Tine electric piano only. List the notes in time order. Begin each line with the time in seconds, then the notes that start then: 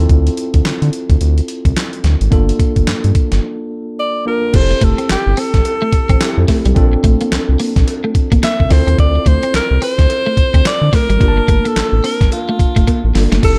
Already playing: C4 E4 F4 A4
2.31 A#3 D4 F4 A4
4.26 A#3 D4 F4 A#4
4.53 C4 E4 G4 A4
6.20 C4 E4 G4 A4
6.75 C4 D4 F4 A4
8.70 C4 E4 F4 A4
11.19 A#3 D4 F4 G4
11.28 A5
13.14 A#3 D4 F4 A4
13.42 C4 E4 G4 A4